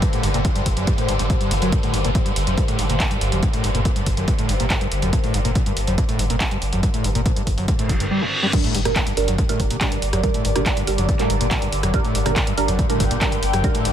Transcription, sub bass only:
0.23 0.34 G1 medium
0.34 0.45 G1 medium
0.66 0.76 G1 loud
0.77 0.87 G1 medium
1.09 1.19 G1 loud
1.19 1.30 G1 medium
1.51 1.61 G1 loud
1.62 1.72 G1 medium
1.94 2.04 G1 loud
2.04 2.15 G1 medium
2.36 2.46 G1 loud
2.47 2.57 G1 medium
2.79 2.89 G1 loud
2.90 3.00 G1 medium
3.21 3.32 G1 loud
3.32 3.42 G1 medium
3.64 3.74 G1 medium
3.75 3.85 G1 medium
4.06 4.17 G1 loud
4.17 4.28 G1 medium
4.49 4.59 G1 loud
4.60 4.70 G1 medium
4.92 5.02 G1 loud
5.02 5.13 G1 medium
5.34 5.44 G1 loud
5.45 5.55 G1 medium
5.77 5.87 G1 loud
5.87 5.98 G1 medium
6.19 6.29 G1 loud
6.30 6.40 G1 medium
6.62 6.72 G1 loud
6.73 6.83 G1 medium
7.04 7.15 G1 medium
7.15 7.25 G1 medium
7.47 7.57 G1 loud
7.58 7.68 G1 medium
7.89 8.00 G1 loud
8.00 8.11 G1 medium
8.75 8.85 G1 medium
8.85 8.96 G1 medium
9.17 9.27 G1 loud
9.28 9.38 G1 medium
9.60 9.70 G1 loud
9.70 9.81 G1 medium
10.02 10.12 G1 loud
10.13 10.23 G1 medium
10.45 10.55 G1 loud
10.56 10.66 G1 medium
10.87 10.98 G1 loud
10.98 11.08 G1 medium
11.30 11.40 G1 loud
11.41 11.51 G1 medium
11.72 11.83 G1 loud
11.83 11.94 G1 medium
12.15 12.25 G1 loud
12.26 12.36 G1 medium
12.58 12.68 G1 loud
12.68 12.79 G1 medium
13.00 13.10 G1 loud
13.11 13.21 G1 medium
13.43 13.53 G1 loud
13.53 13.64 G1 medium
13.85 13.93 G1 loud

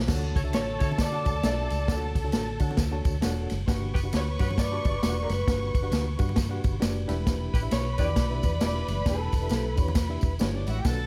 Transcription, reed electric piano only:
0.07 0.76 D3 medium
0.07 0.36 D4 medium
0.07 0.36 F#4 medium
0.07 0.37 A4 medium
0.07 0.37 C#5 medium
0.07 0.37 F#5 loud
0.43 0.68 D4 medium
0.43 0.68 F#4 medium
0.43 0.69 A4 medium
0.43 0.69 C#5 medium
0.43 0.69 E5 medium
0.79 1.00 D4 medium
0.79 1.00 F#4 medium
0.79 1.00 A4 medium
0.79 1.00 C#5 medium
0.79 1.01 E5 medium
1.12 1.36 D4 medium
1.12 1.36 F#4 medium
1.12 1.36 A4 medium
1.12 1.36 C#5 medium
1.12 1.36 F#5 medium
1.43 1.78 D4 medium
1.43 1.50 F4 medium
1.43 1.78 A4 medium
1.43 1.79 D5 medium
1.43 1.79 E5 loud
1.49 1.81 F#4 medium
1.88 2.56 D3 medium
1.88 2.16 D4 medium
1.88 2.16 F#4 medium
1.88 2.17 A4 medium
1.88 2.17 C#5 medium
1.88 2.17 F#5 medium
2.24 2.49 D4 medium
2.24 2.49 F#4 medium
2.24 2.49 A4 medium
2.24 2.49 C#5 medium
2.24 2.49 A5 medium
2.60 2.80 D4 medium
2.60 2.80 F#4 medium
2.60 2.80 A4 medium
2.60 2.81 C#5 medium
2.60 2.81 F#5 loud
2.91 3.15 D4 medium
2.91 3.15 F#4 medium
2.91 3.16 A4 medium
2.91 3.16 C#5 medium
2.91 3.16 A5 loud
3.22 3.57 D4 loud
3.22 3.57 F#4 medium
3.22 3.58 A4 medium
3.22 3.57 C#5 medium
3.22 3.58 F#5 loud
3.67 4.36 G2 medium
3.67 3.96 D4 loud
3.67 3.96 F#4 medium
3.67 3.96 G4 loud
3.67 3.97 B4 medium
3.67 3.97 F#5 loud
4.03 4.28 D4 medium
4.03 4.28 F#4 medium
4.03 4.28 G4 medium
4.03 4.28 B4 medium
4.03 4.29 F#5 medium
4.39 4.59 D4 medium
4.39 4.59 F#4 medium
4.39 4.59 G4 medium
4.39 4.60 B4 medium
4.39 4.60 F#5 medium
4.71 4.95 D4 medium
4.71 4.95 F#4 medium
4.71 4.95 G4 medium
4.71 4.95 B4 medium
4.71 4.95 A5 medium
5.02 5.37 D4 medium
5.02 5.37 F#4 medium
5.02 5.38 G4 medium
5.02 5.38 B4 medium
5.02 5.10 E5 medium
5.09 5.40 F#5 medium
5.47 6.16 G2 medium
5.47 5.75 D4 medium
5.47 5.76 F#4 medium
5.47 5.76 G4 medium
5.47 5.76 B4 medium
5.47 5.76 F#5 medium
5.82 6.07 D4 medium
5.82 6.07 F#4 medium
5.82 6.07 G4 medium
5.82 6.08 B4 medium
5.82 6.08 F#5 loud
6.18 6.38 D4 medium
6.18 6.39 F#4 medium
6.18 6.39 G4 medium
6.18 6.39 B4 medium
6.18 6.39 F#5 loud
6.49 6.74 D4 medium
6.49 6.74 F#4 medium
6.49 6.74 G4 medium
6.49 6.74 B4 medium
6.49 6.74 F#5 loud
6.80 7.07 D4 medium
6.80 7.08 F#4 medium
6.80 7.07 G4 medium
6.80 7.08 B4 medium
6.80 7.09 D5 loud
7.08 7.68 E3 medium
7.08 7.54 D4 loud
7.08 7.53 E4 medium
7.08 7.54 G4 medium
7.08 7.54 B4 medium
7.08 7.54 E5 loud
7.61 7.86 D4 medium
7.61 7.86 E4 medium
7.61 7.87 G4 medium
7.61 7.87 B4 medium
7.61 7.87 E5 medium
7.98 8.18 D4 medium
7.98 8.18 E4 medium
7.98 8.19 G4 medium
7.98 8.19 B4 medium
7.98 8.19 G5 medium
8.30 8.54 D4 medium
8.30 8.54 E4 medium
8.30 8.54 G4 medium
8.30 8.54 B4 medium
8.30 8.54 E5 medium
8.61 8.96 D4 medium
8.61 8.96 E4 medium
8.61 8.96 G4 medium
8.61 8.96 B4 medium
8.61 8.96 E5 medium
8.89 9.47 E3 medium
9.05 9.34 D4 medium
9.05 9.34 E4 medium
9.05 9.34 G4 medium
9.05 9.35 B4 medium
9.05 9.35 G5 medium
9.41 9.66 D4 medium
9.41 9.66 E4 medium
9.41 9.66 G4 medium
9.41 9.67 B4 medium
9.41 9.67 E5 medium
9.76 9.97 D4 medium
9.76 9.97 E4 medium
9.76 9.97 G4 medium
9.76 9.97 B4 medium
9.76 9.98 C#5 loud
10.09 10.33 D4 medium
10.09 10.33 E4 medium
10.09 10.33 G4 medium
10.09 10.34 B4 medium
10.09 10.34 E5 loud
10.40 10.75 D4 medium
10.40 10.75 E4 medium
10.40 10.75 G4 medium
10.40 10.75 B4 medium
10.40 10.76 C#5 loud
10.85 11.07 B2 medium
10.85 11.07 D4 loud
10.85 11.07 F#4 medium
10.85 11.07 A4 medium
10.85 11.07 B4 medium
10.85 11.07 F#5 loud

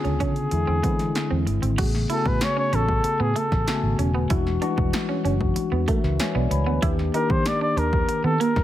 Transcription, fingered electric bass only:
0.05 0.18 C#2 medium
0.20 0.46 C#3 loud
0.52 0.65 E2 medium
0.68 0.81 E2 medium
0.83 1.09 E3 medium
1.31 1.44 E2 medium
1.47 1.60 G1 medium
1.63 1.76 G#1 medium
1.78 2.04 A1 loud
2.26 2.39 A2 medium
2.73 2.99 A1 medium
3.04 muted fingered electric bass stroke soft
3.20 3.33 A2 medium
3.52 3.65 A1 medium
3.83 3.96 G#1 medium
3.99 4.14 E1 medium
4.14 4.27 D#1 medium
4.30 4.56 E1 loud
4.78 4.91 E1 loud
5.25 5.51 F#1 medium
5.56 muted fingered electric bass stroke soft
5.72 5.85 E2 medium
6.04 6.17 C#2 medium
6.35 6.48 B1 medium
6.51 6.64 C#2 medium
6.66 6.79 D2 medium
6.83 7.08 D#2 medium
7.30 7.43 D#3 medium
7.77 8.03 D#2 medium
8.09 muted fingered electric bass stroke soft
8.24 8.37 D#3 medium
8.56 8.64 F2 medium

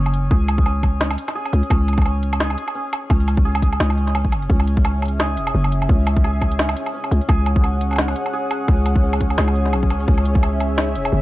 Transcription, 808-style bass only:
0.00 0.30 F#1 medium
0.31 1.17 C#2 loud
1.53 1.62 C#2 loud
1.70 2.57 C#2 loud
3.10 3.79 C#2 loud
3.80 4.34 C#2 medium
4.32 4.49 F#1 medium
4.50 5.39 C#2 loud
5.37 5.53 E1 medium
5.55 5.88 F#1 medium
5.89 6.76 C#2 loud
7.11 7.20 C#2 loud
7.29 8.15 C#2 loud
8.68 9.37 C#2 loud
9.38 9.75 C#2 medium
9.73 9.92 B1 loud
9.90 10.07 C#2 medium
10.08 10.97 C#2 loud
10.95 11.11 E1 medium
11.12 11.22 F#1 medium

